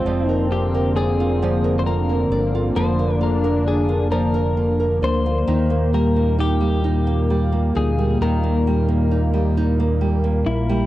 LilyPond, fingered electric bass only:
\new Staff \with { instrumentName = "Fingered electric bass" } { \clef bass \time 6/8 \key bes \mixolydian \tempo 4. = 44 f,,2~ f,,8 g,,8 | f,,2~ f,,8 d,8 | ees,2~ ees,8 d,8 | ees,2~ ees,8 bes,,8 | }